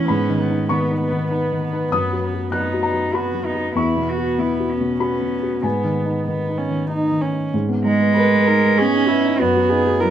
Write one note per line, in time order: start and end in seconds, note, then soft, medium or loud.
0.00 0.11 E2 medium
0.00 0.12 E3 soft
0.00 0.72 C#4 medium
0.00 0.11 E4 medium
0.00 0.11 F#5 medium
0.00 0.12 G#5 medium
0.00 0.11 A#5 medium
0.08 1.89 G#2 medium
0.08 0.38 B3 medium
0.08 0.66 B5 medium
0.29 0.62 D#3 soft
0.39 0.69 B3 medium
0.50 0.83 D#4 soft
0.69 1.03 D#3 soft
0.69 2.53 B3 medium
0.69 1.00 B3 soft
0.69 1.88 C#6 medium
0.91 1.23 D#4 soft
1.00 1.31 B3 medium
1.12 1.44 D#3 soft
1.31 1.62 B3 soft
1.31 1.64 D#4 soft
1.52 1.85 D#3 soft
1.62 1.91 B3 medium
1.72 1.93 D#4 soft
1.92 3.72 F#2 medium
1.92 2.22 B3 medium
1.92 2.50 D#6 medium
2.13 2.46 F#3 soft
2.23 2.53 B3 soft
2.34 2.67 F#4 soft
2.52 2.86 F#3 soft
2.52 2.82 B3 soft
2.52 3.16 D#4 medium
2.52 2.82 F#6 medium
2.73 3.07 F#4 medium
2.83 3.13 B3 soft
2.83 3.12 A#5 medium
2.93 3.27 F#3 soft
3.13 3.45 B3 medium
3.13 3.47 F#4 medium
3.13 3.72 B5 medium
3.34 3.68 F#3 soft
3.45 3.75 B3 soft
3.45 3.75 D#4 medium
3.55 3.76 F#4 soft
3.75 5.59 E2 medium
3.75 4.96 B3 medium
3.75 4.10 E4 medium
3.75 4.97 C#6 medium
3.96 4.30 B2 soft
4.09 4.41 F#4 medium
4.18 4.51 F#4 soft
4.38 4.71 B2 soft
4.38 4.71 E4 medium
4.60 4.93 F#4 soft
4.70 5.65 C#4 medium
4.80 5.13 B2 soft
5.00 5.63 B3 soft
5.00 5.34 F#4 soft
5.00 5.60 B5 medium
5.21 5.55 B2 soft
5.43 5.64 F#4 soft
5.63 7.48 G#2 soft
5.63 7.22 B3 soft
5.63 6.20 B3 soft
5.63 6.86 G#5 medium
5.84 6.19 D#3 soft
6.06 6.40 D#4 soft
6.27 6.61 D#3 soft
6.27 6.59 B3 soft
6.49 6.82 D#4 soft
6.58 6.90 C#4 medium
6.70 7.03 D#3 soft
6.90 7.23 D#4 soft
6.90 7.23 D#4 medium
7.12 7.45 D#3 soft
7.21 7.53 C#4 soft
7.33 7.53 D#4 soft
7.54 9.36 G#2 medium
7.69 7.93 B3 medium
7.84 8.79 G#3 loud
7.84 8.09 D#4 medium
8.00 8.25 B4 medium
8.15 8.31 A#4 medium
8.15 8.49 B4 medium
8.32 8.57 B4 medium
8.47 8.72 D#4 medium
8.47 8.79 A#4 medium
8.65 8.88 B4 medium
8.77 9.03 B3 medium
8.77 9.41 C#4 loud
8.77 9.09 G#4 medium
8.95 9.19 D#4 soft
9.08 9.40 E4 medium
9.08 9.34 B4 medium
9.25 9.40 D#4 medium
9.39 10.10 F#2 medium
9.39 10.03 B3 medium
9.39 9.71 F#4 medium
9.57 9.80 F#3 medium
9.69 9.95 D#4 medium
9.69 10.01 G#4 medium
9.85 10.10 F#4 medium
10.00 10.10 F#3 medium
10.00 10.10 E4 soft
10.00 10.10 A#4 medium